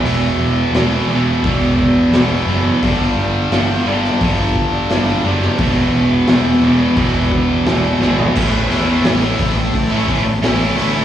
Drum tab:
CC |----------------|----------------|----------------|x---------------|
HH |o---o---o---o---|o---o---o---o---|o---o---o---o---|--o-o-o-o-o-o-o-|
SD |----o-------o---|----o--o----o--o|----o-------o-o-|--o-o-------o---|
FT |----------------|----------------|---------------o|----------------|
BD |--------o-o-----|o-------o-o-----|o-------o-o-----|o-----o-o-o-----|